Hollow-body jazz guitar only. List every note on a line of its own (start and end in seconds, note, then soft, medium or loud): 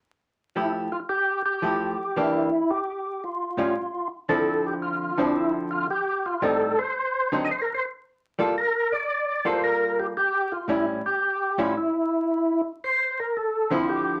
0.56 0.88 F3 soft
0.56 0.88 A3 soft
0.56 0.88 E4 soft
0.56 0.88 G4 soft
1.62 1.94 F3 medium
1.62 1.95 A3 medium
1.62 1.95 E4 soft
1.62 1.95 G4 medium
2.16 2.48 E3 medium
2.16 2.48 A#3 medium
2.16 2.49 D4 medium
2.16 2.48 G4 medium
3.57 3.73 A2 medium
3.57 3.74 G3 medium
3.57 3.74 C#4 medium
3.57 3.74 F4 medium
4.29 5.11 D3 medium
4.29 5.11 F3 medium
4.29 5.11 C4 soft
4.29 5.11 E4 medium
5.18 5.85 D3 medium
5.18 5.85 F3 medium
5.18 5.86 C4 medium
5.18 5.86 E4 medium
6.42 6.74 A2 medium
6.42 6.74 G3 medium
6.42 6.75 C4 medium
6.42 6.75 D#4 medium
7.32 7.47 D3 medium
7.32 7.47 F#3 medium
7.32 7.48 C4 medium
7.32 7.48 D#4 medium
8.39 8.54 G3 medium
8.39 8.54 A#3 medium
8.39 8.54 F4 medium
8.39 8.55 A4 medium
9.45 10.12 G3 soft
9.45 10.12 A#3 medium
9.45 10.12 F4 medium
9.45 10.13 A4 medium
10.68 11.00 A2 soft
10.68 11.01 G3 medium
10.68 11.01 C#4 medium
10.68 11.01 E4 medium
11.58 11.74 A2 medium
11.58 11.74 G3 medium
11.58 11.74 C#4 medium
11.58 11.74 E4 medium
13.71 14.20 D3 medium
13.71 14.20 F3 medium
13.71 14.20 C4 medium
13.71 14.20 E4 medium